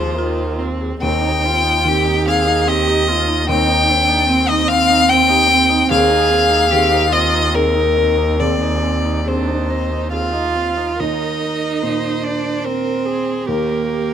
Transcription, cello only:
0.00 0.56 F4 medium
1.03 1.47 D#4 medium
1.45 1.89 F4 medium
1.88 2.29 G4 medium
2.28 2.70 G#4 medium
2.68 3.09 G4 medium
3.08 3.48 F4 medium
3.49 3.90 D#4 medium
3.89 4.29 D4 medium
4.28 5.92 C4 medium
5.90 6.73 G#4 medium
6.71 7.11 G4 medium
7.12 7.57 F4 medium
7.55 8.39 D#4 medium
8.40 9.16 C4 soft
9.26 9.72 D4 medium
9.70 10.13 D#4 soft
10.13 11.01 F4 medium
11.00 12.25 D#4 medium
12.24 12.67 D4 medium
12.65 13.50 C4 medium
13.49 14.14 A#3 medium

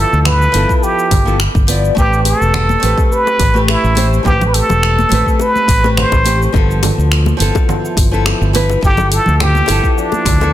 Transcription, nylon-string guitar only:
0.00 0.50 F3 medium
0.00 0.51 B3 medium
0.00 0.51 E4 medium
0.00 0.52 A4 medium
0.52 1.22 F3 medium
0.52 1.23 B3 medium
0.52 1.24 E4 medium
0.57 1.25 A4 loud
1.25 1.37 F3 medium
1.25 1.37 B3 medium
1.25 1.38 E4 medium
1.25 1.38 A4 loud
1.67 1.93 F3 medium
1.67 1.94 B3 medium
1.67 1.94 E4 medium
1.67 1.94 D5 medium
1.95 2.78 A3 medium
1.95 2.79 C4 medium
1.95 2.80 G4 medium
2.00 2.81 B4 medium
2.80 3.51 A3 medium
2.80 3.52 C4 medium
2.80 3.52 G4 medium
2.85 3.53 B4 loud
3.54 3.93 A3 medium
3.54 3.94 C4 medium
3.54 3.94 G4 medium
3.54 3.94 B4 loud
3.95 4.21 A3 medium
3.95 4.22 C4 medium
3.95 4.22 G4 medium
3.95 4.23 C5 loud
4.23 5.07 A3 medium
4.23 5.07 C4 medium
4.23 5.08 G4 medium
4.28 5.09 B4 medium
5.09 5.80 A3 medium
5.09 5.80 C4 medium
5.09 5.81 G4 medium
5.14 5.82 B4 loud
5.83 6.22 A3 medium
5.83 6.23 C4 medium
5.83 6.23 G4 medium
5.83 6.23 B4 medium
6.25 6.50 A3 medium
6.25 6.51 C4 medium
6.25 6.51 G4 medium
6.25 6.52 C5 loud
6.52 7.36 F3 medium
6.52 7.37 B3 medium
6.57 7.38 A4 loud
7.37 8.08 F3 medium
7.37 8.09 B3 medium
7.37 8.09 E4 medium
7.42 8.10 A4 loud
8.11 8.51 F3 medium
8.11 8.51 B3 medium
8.11 8.51 E4 medium
8.11 8.52 A4 loud
8.53 8.79 F3 medium
8.53 8.80 B3 medium
8.53 8.80 E4 medium
8.53 8.80 B4 loud
8.81 9.64 F3 medium
8.81 9.65 B3 medium
8.81 9.66 E4 medium
8.86 9.67 A4 medium
9.66 10.37 F3 medium
9.66 10.37 B3 medium
9.66 10.38 E4 medium
9.71 10.39 A4 loud
10.40 10.52 F3 medium
10.40 10.52 B3 medium
10.40 10.53 E4 medium
10.40 10.53 A4 loud

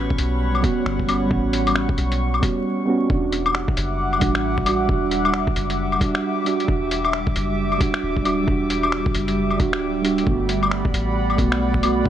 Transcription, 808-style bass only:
0.19 0.63 B1 medium
0.86 1.30 G1 loud
1.31 1.88 A1 loud
1.98 2.42 B1 medium
3.10 3.67 E1 loud
3.77 4.21 F#1 loud
4.22 4.88 A1 medium
4.89 5.46 E1 loud
5.56 6.00 F#1 medium
6.68 7.25 E1 loud
7.36 7.80 F#1 medium
8.03 8.47 D1 medium
8.48 9.04 E1 loud
9.15 9.61 F#1 medium
9.60 10.26 D1 loud
10.27 10.83 G1 loud
10.93 11.37 A1 loud
11.38 12.05 B1 medium
12.06 12.09 G1 loud

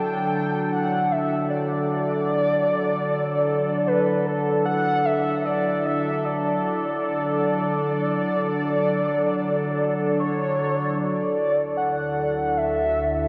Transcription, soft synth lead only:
0.00 0.74 G5 loud
0.72 1.13 F#5 loud
1.11 1.50 E5 medium
1.50 3.89 D5 loud
3.87 4.27 B4 medium
4.26 4.65 A4 medium
4.66 5.06 F#5 loud
5.05 5.47 E5 loud
5.45 5.86 D5 medium
5.85 6.26 E5 medium
6.24 10.19 D5 loud
10.20 11.00 C#5 loud
10.98 11.77 D5 loud
11.77 12.58 F#5 loud
12.57 13.28 E5 loud

